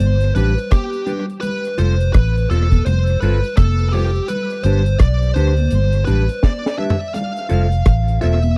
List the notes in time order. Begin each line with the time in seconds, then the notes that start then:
Already playing: C5
0.00 G1
0.20 closed hi-hat
0.35 A1 D4 G4 B4, closed hi-hat, low conga
0.58 closed hi-hat
0.71 G4, kick, cross-stick, closed hi-hat, high conga
0.93 closed hi-hat
1.06 D4 G4 B4, closed hi-hat, low conga
1.30 closed hi-hat
1.41 B4, closed hi-hat, low conga
1.65 closed hi-hat
1.78 F1 F4 A4 C5, closed hi-hat, low conga
2.00 closed hi-hat
2.13 A1 B4, kick, cross-stick, closed hi-hat
2.37 closed hi-hat
2.50 E1 F4 A4 C5, closed hi-hat, high conga
2.72 kick, closed hi-hat, high conga
2.86 F1 C5, cross-stick, closed hi-hat, low conga
3.07 closed hi-hat
3.21 G1 F4 A4 B4 C5, closed hi-hat, low conga
3.44 closed hi-hat
3.57 F1 A4, kick, cross-stick, closed hi-hat, high conga
3.79 closed hi-hat
3.89 G4 A4, open hi-hat
3.93 F4 A4 C5, low conga
4.16 closed hi-hat
4.28 B4, closed hi-hat, low conga
4.50 closed hi-hat
4.63 G1 D4 G4 B4 C5, closed hi-hat, low conga
4.86 closed hi-hat
4.99 B1 D5, kick, cross-stick, closed hi-hat
5.22 closed hi-hat
5.34 D2 D4 G4 B4 C5, closed hi-hat
5.57 closed hi-hat, high conga
5.71 G1, closed hi-hat, low conga
5.92 closed hi-hat
6.05 A1 D4 G4 B4, closed hi-hat, low conga
6.29 closed hi-hat
6.43 D5, kick, snare, high conga
6.66 snare
6.78 D4 G4 B4 E5, low conga
6.90 floor tom
7.14 F5, closed hi-hat, low conga
7.36 closed hi-hat
7.49 F1 F4 A4 C5, closed hi-hat, low conga
7.72 closed hi-hat
7.86 A1, kick, cross-stick, closed hi-hat
8.08 closed hi-hat
8.21 E1 F4 A4 C5 E5, closed hi-hat, high conga
8.43 closed hi-hat, high conga